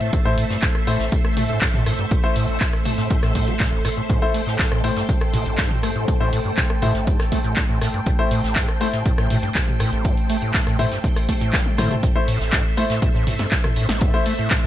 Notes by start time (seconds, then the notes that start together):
Already playing: A3 A4 C5 E5
0.01 A2, closed hi-hat
0.13 kick, closed hi-hat
0.25 A2 A3 E4 C5
0.38 A2, closed hi-hat, open hi-hat
0.50 G2, snare
0.62 A2, kick, snare, clap, closed hi-hat
0.75 cross-stick
0.87 A2 A3 E4 C5, closed hi-hat, open hi-hat
1.00 A1, snare, closed hi-hat
1.12 A2, kick, closed hi-hat
1.25 cross-stick
1.37 A3, closed hi-hat, mid tom, open hi-hat
1.49 A2, closed hi-hat
1.61 A2, kick, snare, clap, closed hi-hat, open hi-hat
1.74 A2, closed hi-hat, mid tom
1.86 A2, cross-stick, closed hi-hat, open hi-hat
1.99 G2, closed hi-hat
2.11 A2, kick, closed hi-hat
2.24 A3 E4 C5, closed hi-hat
2.36 A2, closed hi-hat, open hi-hat
2.49 A1
2.60 A2, kick, snare, clap, closed hi-hat
2.73 cross-stick, closed hi-hat
2.86 A3, closed hi-hat, mid tom, open hi-hat
2.98 A2, snare, closed hi-hat
3.10 A2, kick, closed hi-hat
3.22 A2, cross-stick, snare
3.35 A2, kick, closed hi-hat, open hi-hat
3.47 A3, closed hi-hat
3.60 A2, kick, snare, clap, closed hi-hat
3.73 A1
3.85 A2, cross-stick, snare, closed hi-hat, open hi-hat
3.97 A2, closed hi-hat
4.09 A2 G5, kick, closed hi-hat
4.22 A3 E4 C5
4.34 A3, closed hi-hat, open hi-hat
4.47 A2, snare
4.59 A2, kick, snare, clap, closed hi-hat
4.72 A2, cross-stick
4.84 A2 A3 E4 C5, closed hi-hat, open hi-hat
4.96 G2, snare, closed hi-hat
5.09 A2, kick, closed hi-hat
5.21 cross-stick
5.33 A2, closed hi-hat, mid tom, open hi-hat
5.46 A1, closed hi-hat
5.58 A2, kick, snare, clap, closed hi-hat, open hi-hat
5.71 closed hi-hat, mid tom
5.83 A3, cross-stick, closed hi-hat, open hi-hat
5.96 A2, closed hi-hat
6.08 A2, kick, closed hi-hat
6.20 A2 A3 E4 C5, closed hi-hat
6.32 A2, closed hi-hat, open hi-hat
6.45 G2
6.57 A2, kick, snare, clap, closed hi-hat
6.70 cross-stick
6.82 A2 A3 E4 C5, closed hi-hat, mid tom, open hi-hat
6.95 A1, snare, closed hi-hat
7.07 A2, kick, closed hi-hat
7.19 cross-stick, snare
7.32 A3, kick, closed hi-hat, open hi-hat
7.44 A2, closed hi-hat
7.56 kick, snare, clap, closed hi-hat
7.69 A2
7.81 A2, cross-stick, snare, closed hi-hat, open hi-hat
7.94 G2, closed hi-hat
8.06 A2, kick, closed hi-hat
8.19 A3 E4 C5
8.31 A2, closed hi-hat, open hi-hat
8.44 A1, snare
8.56 A2, kick, snare, clap, closed hi-hat
8.68 cross-stick
8.80 A3 E4 C5, closed hi-hat, open hi-hat
8.93 A2, snare, closed hi-hat
9.05 A2, kick, closed hi-hat
9.18 A2, cross-stick
9.30 A2, closed hi-hat, mid tom, open hi-hat
9.43 G2, closed hi-hat
9.55 A2, kick, snare, clap, closed hi-hat, open hi-hat
9.68 closed hi-hat, mid tom
9.80 A2, cross-stick, closed hi-hat, open hi-hat
9.93 A1, closed hi-hat
10.05 A2, kick, closed hi-hat
10.17 closed hi-hat
10.30 A3, closed hi-hat, open hi-hat
10.42 A2, closed hi-hat
10.54 A2, kick, snare, clap, closed hi-hat
10.67 A2, cross-stick
10.79 A2 A3 E4 C5, closed hi-hat, mid tom, open hi-hat
10.92 G2, snare, closed hi-hat
11.04 A2, kick, closed hi-hat
11.16 cross-stick, snare, open hi-hat
11.29 A3, kick, closed hi-hat, open hi-hat
11.41 A2, closed hi-hat
11.53 A3, kick, snare, clap, closed hi-hat, high tom
11.66 high tom
11.77 A2 A3 E4 C5, cross-stick, snare, closed hi-hat, mid tom, open hi-hat
11.91 C3, closed hi-hat, mid tom
12.03 A2 A3 A4 C5 E5, kick, closed hi-hat
12.15 A3 E4 C5
12.27 A2, closed hi-hat, open hi-hat
12.40 A1, snare
12.52 A2, kick, snare, clap, closed hi-hat
12.77 A3 E4 C5, closed hi-hat, open hi-hat
12.90 A2, snare, closed hi-hat
13.02 A2, kick, closed hi-hat
13.15 A2
13.27 A2, closed hi-hat, mid tom, open hi-hat
13.39 G2, snare, closed hi-hat
13.51 A2, kick, snare, clap, closed hi-hat, open hi-hat
13.64 cross-stick, closed hi-hat, mid tom
13.76 A2, closed hi-hat, open hi-hat
13.89 A1, snare
14.01 A2, kick, closed hi-hat
14.14 A3 E4 C5, closed hi-hat
14.26 A3, closed hi-hat, open hi-hat
14.39 A2
14.51 A2, kick, snare, clap, closed hi-hat
14.64 A2